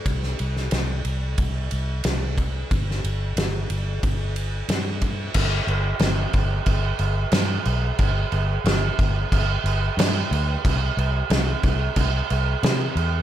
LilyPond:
<<
  \new Staff \with { instrumentName = "Fingered electric bass" } { \clef bass \time 4/4 \key g \major \tempo 4 = 91 c,8 c,8 c,8 c,8 c,8 c,8 c,4 | g,,8 g,,8 g,,8 g,,8 g,,4 g,4 | g,,8 g,,8 g,,8 g,,8 g,,8 g,,8 g,8 b,,8 | g,,8 g,,8 g,,8 g,,8 g,,8 g,,8 g,8 d,8 |
c,8 c,8 c,8 c,8 c,8 c,8 c8 e,8 | }
  \new DrumStaff \with { instrumentName = "Drums" } \drummode { \time 4/4 <bd cymr>16 sn16 cymr16 sn16 <cymr sn>8 cymr8 <bd cymr>8 cymr8 <cymr sn>8 <bd cymr>8 | <bd cymr>16 sn16 cymr8 <cymr sn>8 cymr8 <bd cymr>8 cymr8 <cymr sn>8 <bd cymr>8 | <cymc bd>8 cymc8 <cymc sn>8 <cymc bd>8 <cymc bd>8 cymc8 <cymc sn>8 cymc8 | <cymc bd>8 cymc8 <cymc sn>8 <cymc bd>8 <cymc bd>8 cymc8 <cymc sn>8 cymc8 |
<cymc bd>8 cymc8 <cymc sn>8 <cymc bd>8 <cymc bd>8 cymc8 <cymc sn>8 cymc8 | }
>>